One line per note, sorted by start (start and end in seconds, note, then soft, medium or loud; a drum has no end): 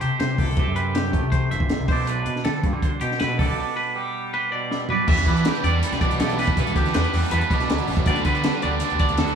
0.00 0.20 C3 medium
0.00 0.09 C3 medium
0.00 0.56 A3 medium
0.00 0.57 C4 medium
0.00 0.39 G4 medium
0.00 0.20 G4 medium
0.00 0.56 C5 medium
0.00 closed hi-hat medium
0.20 0.40 C3 medium
0.20 0.56 C3 medium
0.20 0.39 C5 medium
0.20 snare loud
0.20 closed hi-hat medium
0.38 0.47 G1 medium
0.38 0.59 G4 medium
0.38 0.75 A4 medium
0.38 kick medium
0.38 open hi-hat medium
0.48 0.56 C2 medium
0.57 1.70 C3 medium
0.57 0.76 C4 medium
0.57 1.91 G4 medium
0.57 1.52 C5 medium
0.57 kick loud
0.57 closed hi-hat medium
0.67 1.15 F#2 medium
0.76 1.90 C4 medium
0.76 0.95 B4 medium
0.76 closed hi-hat medium
0.95 1.33 G4 medium
0.95 snare loud
0.95 closed hi-hat medium
1.13 1.87 A3 medium
1.13 kick medium
1.13 closed hi-hat medium
1.23 1.47 C3 medium
1.32 1.51 C5 medium
1.32 kick medium
1.32 closed hi-hat medium
1.51 1.68 G1 medium
1.51 1.88 C5 medium
1.51 1.88 E5 medium
1.51 closed hi-hat medium
1.60 kick medium
1.69 1.87 C3 medium
1.69 snare loud
1.69 closed hi-hat medium
1.80 1.88 C2 medium
1.88 2.21 B1 medium
1.88 3.01 B2 medium
1.88 2.09 D4 soft
1.88 3.21 E4 medium
1.88 2.08 C5 medium
1.88 kick loud
1.88 open hi-hat medium
1.92 2.83 D5 medium
2.07 3.40 D4 medium
2.07 2.44 B4 medium
2.07 closed hi-hat medium
2.26 2.35 B2 medium
2.26 closed hi-hat medium
2.36 snare soft
2.45 2.62 D3 loud
2.45 3.94 G3 medium
2.45 2.64 A4 medium
2.45 snare loud
2.45 closed hi-hat medium
2.63 2.73 G2 medium
2.63 kick medium
2.63 closed hi-hat medium
2.73 2.89 D3 medium
2.82 3.37 C5 medium
2.82 kick medium
2.82 closed hi-hat medium
3.01 3.10 B2 medium
3.01 3.37 B2 medium
3.01 3.19 G4 medium
3.01 closed hi-hat medium
3.11 snare soft
3.19 3.40 B2 medium
3.19 3.41 E4 medium
3.19 3.39 B4 medium
3.19 snare medium
3.19 closed hi-hat medium
3.39 3.47 D2 medium
3.39 4.51 B2 medium
3.39 3.58 D4 medium
3.39 4.70 E4 medium
3.39 3.76 A4 medium
3.39 4.34 D5 medium
3.39 kick medium
3.39 open hi-hat medium
3.50 3.57 B1 medium
3.58 4.87 D4 medium
3.77 3.95 B4 medium
3.95 5.63 G3 medium
3.95 4.33 G4 medium
4.34 4.51 B4 medium
4.34 4.88 C5 medium
4.52 4.87 B2 medium
4.52 4.90 D5 medium
4.71 4.90 E4 medium
4.71 snare medium
4.89 5.06 B2 medium
4.89 5.06 D4 soft
4.89 5.46 E4 medium
4.89 5.09 B4 medium
4.89 5.07 D5 medium
4.89 floor tom medium
5.08 5.16 E2 loud
5.08 6.55 E3 medium
5.08 5.45 E3 medium
5.08 5.29 G3 medium
5.08 5.28 B3 medium
5.08 5.27 E4 loud
5.08 5.84 B4 medium
5.08 5.28 E5 medium
5.08 kick loud
5.08 crash loud
5.17 5.26 E2 medium
5.17 snare soft
5.17 closed hi-hat soft
5.26 5.43 E3 medium
5.26 5.46 G3 medium
5.26 5.47 B3 medium
5.26 5.65 D4 medium
5.26 5.47 E4 medium
5.26 5.65 B4 medium
5.26 kick medium
5.26 closed hi-hat medium
5.36 closed hi-hat soft
5.45 5.82 E3 medium
5.45 5.66 G3 medium
5.45 5.65 B3 medium
5.45 5.63 E4 loud
5.45 6.21 G4 medium
5.45 snare loud
5.45 closed hi-hat loud
5.55 closed hi-hat soft
5.64 5.80 E2 medium
5.64 7.15 G3 medium
5.64 5.83 G3 medium
5.64 5.83 B3 medium
5.64 5.74 C4 medium
5.64 5.84 E4 medium
5.64 6.00 D5 medium
5.64 closed hi-hat medium
5.74 6.02 D4 medium
5.83 6.02 E3 medium
5.83 6.02 G3 medium
5.83 6.02 B3 medium
5.83 6.00 E4 medium
5.83 5.93 A4 medium
5.83 closed hi-hat loud
5.92 6.00 B1 medium
5.92 6.58 B4 medium
5.92 snare soft
5.92 closed hi-hat soft
6.01 6.56 B2 medium
6.01 6.18 E3 medium
6.01 6.20 G3 medium
6.01 6.20 B3 medium
6.01 6.40 D4 medium
6.01 6.20 E4 medium
6.01 6.20 D5 medium
6.01 kick medium
6.01 closed hi-hat medium
6.11 6.19 B1 medium
6.11 closed hi-hat medium
6.19 6.52 B1 loud
6.19 6.55 E3 medium
6.19 6.40 G3 medium
6.19 6.40 B3 medium
6.19 6.37 E4 medium
6.19 6.97 G4 medium
6.19 6.39 A4 medium
6.19 snare loud
6.19 closed hi-hat loud
6.29 closed hi-hat soft
6.38 6.57 G3 medium
6.38 6.58 B3 medium
6.38 6.62 D4 medium
6.38 6.58 E4 medium
6.38 6.58 B4 medium
6.38 open hi-hat medium
6.47 kick medium
6.47 closed hi-hat medium
6.56 6.68 B1 loud
6.56 6.92 E3 medium
6.56 7.70 E3 medium
6.56 6.77 G3 medium
6.56 6.76 B3 medium
6.56 6.74 E4 loud
6.56 6.76 A4 medium
6.56 7.33 B4 medium
6.56 kick loud
6.56 closed hi-hat loud
6.67 6.75 A2 medium
6.67 closed hi-hat soft
6.75 6.84 D2 loud
6.75 6.94 G3 medium
6.75 6.94 B3 medium
6.75 7.16 D4 medium
6.75 6.95 E4 medium
6.75 6.94 G4 medium
6.75 kick medium
6.75 closed hi-hat medium
6.85 snare soft
6.85 closed hi-hat soft
6.93 7.03 E2 loud
6.93 7.31 E3 medium
6.93 7.15 G3 medium
6.93 7.13 B3 medium
6.93 7.11 E4 loud
6.93 7.30 B4 medium
6.93 snare loud
6.93 closed hi-hat loud
6.97 8.10 G4 medium
7.04 closed hi-hat soft
7.12 7.22 E2 medium
7.12 7.32 G3 medium
7.12 8.08 G3 medium
7.12 7.33 B3 medium
7.12 7.32 E4 medium
7.12 open hi-hat medium
7.16 7.53 D4 medium
7.31 7.40 E2 loud
7.31 7.51 E3 medium
7.31 7.51 G3 medium
7.31 7.50 B3 medium
7.31 7.48 E4 medium
7.31 7.43 A4 medium
7.31 7.69 B4 medium
7.31 closed hi-hat loud
7.41 8.07 B4 medium
7.41 closed hi-hat soft
7.50 7.59 B1 medium
7.50 8.05 B2 medium
7.50 7.67 E3 medium
7.50 7.68 G3 medium
7.50 7.69 B3 medium
7.50 8.09 D4 medium
7.50 7.69 E4 medium
7.50 kick medium
7.50 closed hi-hat medium
7.60 snare soft
7.60 closed hi-hat soft
7.68 7.78 D2 loud
7.68 8.05 E3 medium
7.68 7.89 F#3 medium
7.68 7.89 G3 medium
7.68 7.87 B3 medium
7.68 7.85 E4 medium
7.68 snare loud
7.68 closed hi-hat medium
7.78 closed hi-hat soft
7.86 8.04 A1 medium
7.86 8.08 E3 medium
7.86 8.06 G3 medium
7.86 8.07 B3 medium
7.86 8.05 E4 medium
7.86 open hi-hat medium
7.97 kick medium
7.97 closed hi-hat soft
8.05 8.15 D2 loud
8.05 8.43 D3 medium
8.05 9.00 D3 medium
8.05 8.26 G3 medium
8.05 8.65 G3 medium
8.05 8.25 B3 medium
8.05 8.24 D4 loud
8.05 8.25 D5 medium
8.05 kick loud
8.05 closed hi-hat loud
8.09 8.26 D4 medium
8.09 8.45 F#4 medium
8.09 8.84 B4 medium
8.16 8.24 D2 medium
8.16 closed hi-hat soft
8.24 8.41 D3 medium
8.24 8.43 G3 medium
8.24 8.45 B3 medium
8.24 8.35 C4 medium
8.24 8.45 D4 medium
8.24 8.63 B4 medium
8.24 kick medium
8.24 closed hi-hat medium
8.35 8.63 D4 medium
8.35 closed hi-hat soft
8.43 8.80 D3 loud
8.43 8.64 G3 medium
8.43 8.63 B3 medium
8.43 8.62 D4 loud
8.43 8.55 E4 medium
8.43 snare loud
8.43 closed hi-hat loud
8.53 9.20 F#4 medium
8.53 closed hi-hat soft
8.62 8.79 D2 medium
8.62 8.81 G3 medium
8.62 9.35 G3 medium
8.62 8.81 B3 medium
8.62 8.82 D4 medium
8.62 9.01 D4 medium
8.62 8.99 D5 medium
8.62 closed hi-hat medium
8.80 9.01 D3 medium
8.80 9.00 G3 medium
8.80 9.00 B3 medium
8.80 8.98 D4 medium
8.80 closed hi-hat loud
8.84 9.35 D5 medium
8.90 8.99 D2 medium
8.90 closed hi-hat soft
8.99 9.35 D3 medium
8.99 9.17 D3 medium
8.99 9.19 G3 medium
8.99 9.20 B3 medium
8.99 9.20 D4 medium
8.99 9.35 D4 medium
8.99 9.19 D5 medium
8.99 kick medium
8.99 closed hi-hat medium
9.09 9.18 D2 medium
9.09 closed hi-hat medium
9.17 9.35 D2 loud
9.17 9.35 D3 medium
9.17 9.35 G3 medium
9.17 9.35 B3 medium
9.17 9.35 D4 medium
9.17 9.35 F#4 medium
9.17 9.35 A4 medium
9.17 snare loud
9.17 closed hi-hat loud
9.27 closed hi-hat soft